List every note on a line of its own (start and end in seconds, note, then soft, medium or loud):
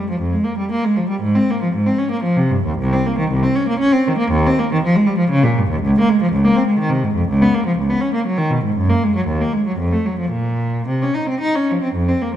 0.10 0.21 F3 medium
0.20 0.33 F2 medium
0.33 0.45 G#3 medium
0.44 0.57 A#3 medium
0.58 0.70 G3 soft
0.71 0.83 A#3 medium
0.84 0.96 G#3 medium
0.97 1.09 F3 medium
1.09 1.21 G3 medium
1.21 1.33 G#2 medium
1.35 1.47 C4 medium
1.50 1.61 A#3 medium
1.62 1.72 F3 medium
1.75 1.85 G#2 medium
1.86 1.98 C4 medium
1.98 2.10 C#4 medium
2.11 2.23 A#3 medium
2.23 2.36 F3 medium
2.37 2.50 C3 medium
2.50 2.64 G2 medium
2.66 2.78 D#2 medium
2.79 2.92 C2 medium
2.93 3.05 C4 medium
3.06 3.18 A#3 medium
3.18 3.30 D#3 medium
3.31 3.43 C2 medium
3.43 3.55 C4 medium
3.56 3.68 C#4 medium
3.68 3.80 A#3 medium
3.79 3.92 C#4 medium
3.92 4.05 C4 medium
4.07 4.19 D#3 medium
4.18 4.31 A#3 medium
4.31 4.43 D#2 medium
4.46 4.58 C4 medium
4.59 4.70 A#3 medium
4.73 4.83 D#3 medium
4.84 4.94 F3 medium
4.96 5.07 G#3 medium
5.06 5.18 G3 medium
5.18 5.30 F3 medium
5.30 5.42 C#3 medium
5.43 5.56 A#2 medium
5.57 5.69 G2 medium
5.70 5.82 D#2 medium
5.82 5.94 C#2 medium
6.00 6.09 A#3 medium
6.09 6.20 G#3 medium
6.22 6.33 F3 medium
6.32 6.44 C#2 medium
6.44 6.56 A#3 medium
6.56 6.68 C4 medium
6.67 6.80 G#3 medium
6.79 6.92 D#3 medium
6.89 7.03 C3 medium
7.03 7.16 G#2 medium
7.15 7.28 F2 medium
7.28 7.41 C#2 medium
7.42 7.54 B3 medium
7.54 7.66 A#3 medium
7.66 7.78 F3 medium
7.78 7.90 C#2 medium
7.90 8.03 B3 medium
8.01 8.14 C#4 medium
8.14 8.27 A#3 medium
8.26 8.39 F#3 medium
8.38 8.52 D#3 medium
8.50 8.64 B2 medium
8.65 8.78 G#2 medium
8.76 8.90 F#2 medium
8.90 9.03 A#3 medium
9.04 9.16 G#3 medium
9.15 9.28 F#3 medium
9.27 9.40 D#2 medium
9.41 9.54 A#3 medium
9.53 9.66 G#3 medium
9.67 9.79 F#3 soft
9.78 9.92 F2 medium
9.93 10.06 A3 medium
10.05 10.19 F#3 medium
10.19 10.33 F3 medium
10.31 10.86 A#2 medium
10.88 11.01 C3 medium
11.02 11.16 C#4 medium
11.14 11.29 D#4 medium
11.29 11.42 C4 soft
11.41 11.55 D#4 medium
11.55 11.70 C#4 medium
11.71 11.84 F3 medium
11.83 11.96 C4 medium
11.94 12.08 F2 medium
12.08 12.22 C4 medium
12.22 12.36 A#3 medium